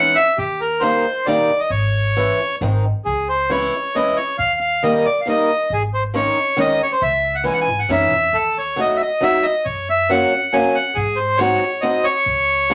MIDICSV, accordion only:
0, 0, Header, 1, 2, 480
1, 0, Start_track
1, 0, Key_signature, 4, "minor"
1, 0, Tempo, 444115
1, 409, Time_signature, 3, 2, 24, 8
1, 5690, Tempo, 437956
1, 13884, End_track
2, 0, Start_track
2, 0, Title_t, "Accordion"
2, 0, Program_c, 0, 21
2, 0, Note_on_c, 0, 78, 108
2, 164, Note_on_c, 0, 76, 108
2, 182, Note_off_c, 0, 78, 0
2, 411, Note_on_c, 0, 67, 83
2, 412, Note_off_c, 0, 76, 0
2, 658, Note_off_c, 0, 67, 0
2, 658, Note_on_c, 0, 70, 77
2, 865, Note_on_c, 0, 72, 82
2, 896, Note_off_c, 0, 70, 0
2, 1361, Note_on_c, 0, 74, 92
2, 1365, Note_off_c, 0, 72, 0
2, 1727, Note_on_c, 0, 75, 63
2, 1732, Note_off_c, 0, 74, 0
2, 1844, Note_on_c, 0, 73, 89
2, 1846, Note_off_c, 0, 75, 0
2, 2764, Note_off_c, 0, 73, 0
2, 3300, Note_on_c, 0, 68, 78
2, 3547, Note_off_c, 0, 68, 0
2, 3553, Note_on_c, 0, 72, 70
2, 3785, Note_on_c, 0, 73, 84
2, 3791, Note_off_c, 0, 72, 0
2, 4274, Note_on_c, 0, 75, 84
2, 4277, Note_off_c, 0, 73, 0
2, 4499, Note_on_c, 0, 73, 86
2, 4515, Note_off_c, 0, 75, 0
2, 4720, Note_off_c, 0, 73, 0
2, 4739, Note_on_c, 0, 77, 87
2, 4961, Note_off_c, 0, 77, 0
2, 4977, Note_on_c, 0, 77, 88
2, 5220, Note_off_c, 0, 77, 0
2, 5227, Note_on_c, 0, 75, 83
2, 5462, Note_on_c, 0, 74, 89
2, 5468, Note_off_c, 0, 75, 0
2, 5625, Note_off_c, 0, 74, 0
2, 5632, Note_on_c, 0, 77, 51
2, 5699, Note_off_c, 0, 77, 0
2, 5715, Note_on_c, 0, 75, 92
2, 6199, Note_off_c, 0, 75, 0
2, 6204, Note_on_c, 0, 68, 87
2, 6305, Note_off_c, 0, 68, 0
2, 6432, Note_on_c, 0, 72, 69
2, 6534, Note_off_c, 0, 72, 0
2, 6661, Note_on_c, 0, 73, 92
2, 7147, Note_off_c, 0, 73, 0
2, 7158, Note_on_c, 0, 75, 110
2, 7391, Note_off_c, 0, 75, 0
2, 7405, Note_on_c, 0, 73, 107
2, 7507, Note_on_c, 0, 72, 62
2, 7509, Note_off_c, 0, 73, 0
2, 7618, Note_on_c, 0, 76, 95
2, 7620, Note_off_c, 0, 72, 0
2, 7977, Note_on_c, 0, 78, 67
2, 7986, Note_off_c, 0, 76, 0
2, 8097, Note_off_c, 0, 78, 0
2, 8101, Note_on_c, 0, 80, 89
2, 8175, Note_off_c, 0, 80, 0
2, 8175, Note_on_c, 0, 78, 79
2, 8248, Note_off_c, 0, 78, 0
2, 8263, Note_on_c, 0, 80, 90
2, 8461, Note_on_c, 0, 78, 77
2, 8470, Note_off_c, 0, 80, 0
2, 8581, Note_off_c, 0, 78, 0
2, 8598, Note_on_c, 0, 76, 96
2, 9065, Note_on_c, 0, 69, 91
2, 9089, Note_off_c, 0, 76, 0
2, 9319, Note_off_c, 0, 69, 0
2, 9326, Note_on_c, 0, 73, 82
2, 9567, Note_off_c, 0, 73, 0
2, 9571, Note_on_c, 0, 75, 90
2, 9747, Note_on_c, 0, 76, 60
2, 9751, Note_off_c, 0, 75, 0
2, 9803, Note_off_c, 0, 76, 0
2, 9808, Note_on_c, 0, 75, 73
2, 10037, Note_on_c, 0, 76, 94
2, 10048, Note_off_c, 0, 75, 0
2, 10253, Note_on_c, 0, 75, 87
2, 10286, Note_off_c, 0, 76, 0
2, 10497, Note_on_c, 0, 73, 72
2, 10510, Note_off_c, 0, 75, 0
2, 10754, Note_off_c, 0, 73, 0
2, 10770, Note_on_c, 0, 76, 89
2, 10991, Note_on_c, 0, 78, 87
2, 11005, Note_off_c, 0, 76, 0
2, 11464, Note_on_c, 0, 80, 98
2, 11483, Note_off_c, 0, 78, 0
2, 11700, Note_on_c, 0, 78, 89
2, 11715, Note_off_c, 0, 80, 0
2, 11920, Note_on_c, 0, 68, 85
2, 11948, Note_off_c, 0, 78, 0
2, 12153, Note_on_c, 0, 72, 82
2, 12179, Note_off_c, 0, 68, 0
2, 12382, Note_on_c, 0, 73, 101
2, 12410, Note_off_c, 0, 72, 0
2, 12871, Note_on_c, 0, 75, 85
2, 12889, Note_off_c, 0, 73, 0
2, 13117, Note_on_c, 0, 73, 96
2, 13130, Note_off_c, 0, 75, 0
2, 13884, Note_off_c, 0, 73, 0
2, 13884, End_track
0, 0, End_of_file